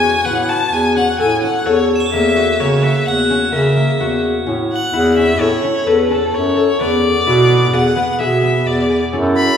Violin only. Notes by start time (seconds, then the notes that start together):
Already playing: G#5
0.24 F#5
0.49 A5
0.73 G#5
0.97 F#5
1.19 G#5
1.42 F#5
1.66 C#5
2.12 E5
2.60 C#5
2.83 E5
3.06 F#5
3.53 E5
4.72 F#5
5.17 E5
5.41 C#5
5.87 B4
6.11 A4
6.34 C#5
6.81 D5
7.74 F#5
8.12 F#5
8.19 E5
8.67 D5
9.36 B5